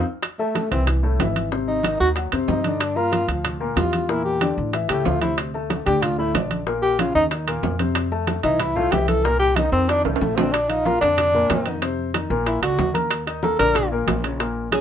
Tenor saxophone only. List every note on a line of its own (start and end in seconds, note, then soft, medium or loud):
0.39 0.69 A3 medium
0.72 0.86 C4 medium
1.68 1.98 D#4 medium
2.00 2.10 F#4 loud
2.48 2.83 D#4 medium
2.81 2.98 D4 medium
2.96 3.29 F4 loud
3.77 4.11 F4 medium
4.09 4.24 E4 medium
4.25 4.55 G4 medium
4.89 5.07 G4 medium
5.06 5.21 F4 medium
5.21 5.37 E4 medium
5.86 6.04 G4 loud
6.02 6.18 F4 medium
6.19 6.34 E4 medium
6.82 7.01 G4 loud
7.00 7.15 F4 medium
7.15 7.25 D#4 loud
8.44 8.62 D#4 loud
8.61 8.77 E4 medium
8.76 8.93 F4 loud
8.92 9.08 G4 medium
9.08 9.26 A4 loud
9.24 9.39 A#4 loud
9.39 9.58 G4 loud
9.56 9.72 D#4 medium
9.72 9.91 C4 loud
9.89 10.04 D4 loud
10.05 10.21 F3 soft
10.21 10.37 A3 medium
10.36 10.54 C4 medium
10.53 10.70 D4 medium
10.69 10.87 D#4 medium
10.85 11.00 F4 loud
11.01 11.78 D4 loud
12.47 12.62 E4 medium
12.63 12.93 F#4 loud
13.44 13.59 A4 medium
13.59 13.89 A#4 loud
14.72 14.81 G#4 medium